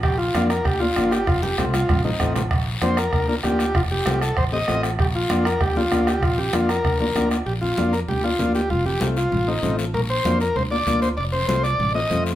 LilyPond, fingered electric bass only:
\new Staff \with { instrumentName = "Fingered electric bass" } { \clef bass \time 4/4 \key bes \major \tempo 4 = 194 bes,,4 f,4 d,4 g,,4 | f,,4 c,4 a,,4 a,,4 | bes,,4 f,4 d,4 d,4 | f,,4 c,4 a,,4 a,,4 |
bes,,4 f,4 d,4 d,4 | bes,,4 f,4 d,4 d,4 | bes,,4 f,4 d,4 d,4 | f,,4 c,4 a,,4 a,,4 |
bes,,4 f,4 d,4 d,4 | f,,4 c,4 a,,4 f,4 | }